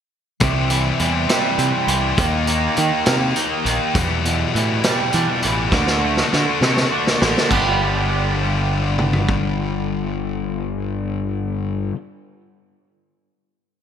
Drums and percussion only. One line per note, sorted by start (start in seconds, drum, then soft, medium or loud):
0.40 kick loud
0.40 closed hi-hat medium
0.70 closed hi-hat medium
0.99 closed hi-hat medium
1.29 snare loud
1.29 closed hi-hat medium
1.59 closed hi-hat medium
1.88 closed hi-hat medium
2.18 kick loud
2.18 closed hi-hat medium
2.47 closed hi-hat medium
2.77 closed hi-hat medium
3.06 snare loud
3.06 closed hi-hat medium
3.36 closed hi-hat medium
3.66 closed hi-hat medium
3.95 kick loud
3.95 closed hi-hat medium
4.25 closed hi-hat medium
4.56 closed hi-hat medium
4.84 snare loud
4.84 closed hi-hat medium
5.13 closed hi-hat medium
5.42 closed hi-hat medium
5.72 kick loud
5.72 snare medium
5.87 snare medium
6.17 snare medium
6.33 snare medium
6.62 snare medium
6.77 snare medium
7.07 snare medium
7.22 snare medium
7.38 snare medium
7.51 kick loud
7.51 crash medium
8.99 mid tom medium
9.13 floor tom medium
9.29 kick medium